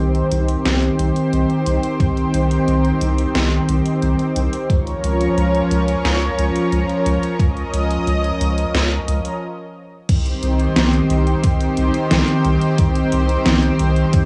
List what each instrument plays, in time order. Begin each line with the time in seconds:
Already playing: analog synth pad D#3 C4 G4 C5
0.00 analog synth bass C2
0.15 closed hi-hat
0.32 analog synth bass C2, closed hi-hat
0.48 closed hi-hat
0.66 analog synth bass C2, snare, closed hi-hat
0.82 closed hi-hat
0.99 analog synth bass C2, closed hi-hat
1.16 closed hi-hat
1.33 analog synth bass C2, closed hi-hat
1.50 closed hi-hat
1.67 analog synth bass C2, closed hi-hat
1.83 closed hi-hat
2.00 analog synth bass C2, kick, closed hi-hat
2.17 closed hi-hat
2.34 analog synth bass C2, closed hi-hat
2.51 closed hi-hat
2.68 analog synth bass C2, closed hi-hat
2.85 closed hi-hat
3.01 analog synth bass C2, closed hi-hat
3.18 closed hi-hat
3.35 analog synth bass C2, snare, closed hi-hat
3.52 closed hi-hat
3.69 analog synth bass C2, closed hi-hat
3.86 closed hi-hat
4.02 analog synth bass C2, closed hi-hat
4.19 closed hi-hat
4.36 analog synth bass C2, closed hi-hat
4.53 closed hi-hat
4.70 analog synth bass C#2, analog synth pad F3 C#4 A#4 C#5, kick, closed hi-hat
4.87 closed hi-hat
5.04 analog synth bass C#2, closed hi-hat
5.20 closed hi-hat
5.37 analog synth bass C#2, closed hi-hat
5.54 closed hi-hat
5.71 analog synth bass C#2, closed hi-hat
5.88 closed hi-hat
6.05 analog synth bass C#2, snare, closed hi-hat
6.22 closed hi-hat
6.39 analog synth bass C#2, closed hi-hat
6.56 closed hi-hat
6.72 analog synth bass C#2, closed hi-hat
6.89 closed hi-hat
7.06 analog synth bass C#2, closed hi-hat
7.23 closed hi-hat
7.39 analog synth bass C#2, analog synth pad D#5, kick, closed hi-hat
7.57 closed hi-hat
7.74 analog synth bass C#2, closed hi-hat
7.91 closed hi-hat
8.07 analog synth bass C#2, closed hi-hat
8.24 closed hi-hat
8.41 analog synth bass C#2, closed hi-hat
8.58 closed hi-hat
8.74 analog synth bass C#2, snare, closed hi-hat
8.91 closed hi-hat
9.08 analog synth bass C#2, closed hi-hat
9.25 closed hi-hat
10.09 analog synth bass C2, analog synth pad D#3 C4 G4 C5, kick, closed hi-hat, crash
10.26 closed hi-hat
10.43 analog synth bass C2, closed hi-hat
10.59 closed hi-hat
10.76 analog synth bass C2, snare, closed hi-hat
10.93 closed hi-hat
11.10 analog synth bass C2, closed hi-hat
11.27 closed hi-hat
11.44 analog synth bass C2, kick, closed hi-hat
11.61 closed hi-hat
11.77 analog synth bass C2, closed hi-hat
11.94 closed hi-hat
12.11 analog synth bass C2, snare, closed hi-hat
12.28 closed hi-hat
12.45 analog synth bass C2, closed hi-hat
12.62 closed hi-hat
12.78 analog synth bass C2, kick, closed hi-hat
12.96 closed hi-hat
13.12 analog synth bass C2, closed hi-hat
13.29 closed hi-hat
13.46 analog synth bass C2, snare, closed hi-hat
13.63 closed hi-hat
13.79 analog synth bass C2, closed hi-hat
13.96 closed hi-hat
14.13 analog synth bass C2, kick, closed hi-hat